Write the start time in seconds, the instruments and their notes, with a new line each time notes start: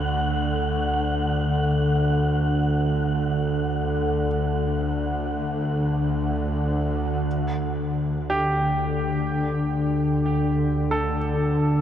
Already playing: synth drone D2 D3, grand piano A2, synth texture F#5
7.26 synth drone D2 D3
8.30 grand piano G4
10.91 grand piano A4